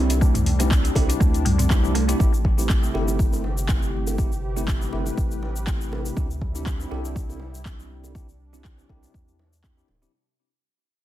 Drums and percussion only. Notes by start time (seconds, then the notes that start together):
0.10 closed hi-hat, high bongo, shaker
0.21 kick, shaker
0.35 closed hi-hat, mid tom, shaker
0.46 open hi-hat, low bongo
0.60 closed hi-hat, low bongo, shaker
0.71 kick, clap, shaker
0.85 closed hi-hat, shaker
0.95 kick, open hi-hat, high bongo
1.10 closed hi-hat, shaker
1.21 kick, shaker
1.34 closed hi-hat, shaker
1.46 mid tom, open hi-hat
1.59 closed hi-hat, mid tom, shaker
1.70 kick, clap, low bongo, shaker
1.84 shaker
1.95 open hi-hat, high bongo
2.09 closed hi-hat, shaker
2.20 kick, shaker
2.34 shaker
2.45 kick
2.59 low bongo, shaker
2.69 kick, clap, shaker
2.83 low bongo, shaker
2.95 high bongo
3.08 low bongo, shaker
3.19 kick, shaker
3.33 high bongo, shaker
3.44 low bongo
3.58 shaker
3.69 kick, clap, low bongo, shaker
3.83 shaker
4.07 high bongo, shaker
4.18 kick, shaker
4.32 shaker
4.56 low bongo, shaker
4.68 kick, clap, shaker
4.81 low bongo, shaker
4.93 high bongo
5.06 low bongo, shaker
5.18 kick, shaker
5.31 shaker
5.43 low bongo
5.56 shaker
5.67 kick, clap, shaker
5.81 shaker
5.92 high bongo, low bongo
6.06 shaker
6.17 kick, shaker
6.31 shaker
6.42 kick
6.55 low bongo, shaker
6.66 kick, clap, shaker
6.80 low bongo, shaker
6.92 high bongo
7.05 low bongo, shaker
7.16 kick, shaker
7.30 high bongo, shaker
7.40 low bongo
7.55 shaker
7.65 kick, clap, low bongo, shaker
7.80 shaker
8.04 high bongo, shaker
8.15 kick, shaker
8.29 shaker
8.53 low bongo, shaker
8.65 kick, clap, shaker
8.78 low bongo, shaker
8.89 kick, high bongo
9.03 low bongo, shaker
9.14 kick, shaker
9.28 shaker
9.39 low bongo
9.53 shaker
9.64 kick, clap, shaker
9.78 shaker
9.88 high bongo, low bongo
10.03 shaker